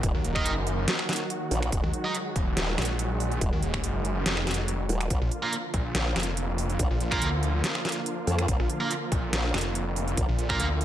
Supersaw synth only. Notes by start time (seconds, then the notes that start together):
Already playing: D#3 F#3 A#3 F#4
1.72 G#3
5.10 D3 F3 A#3 F4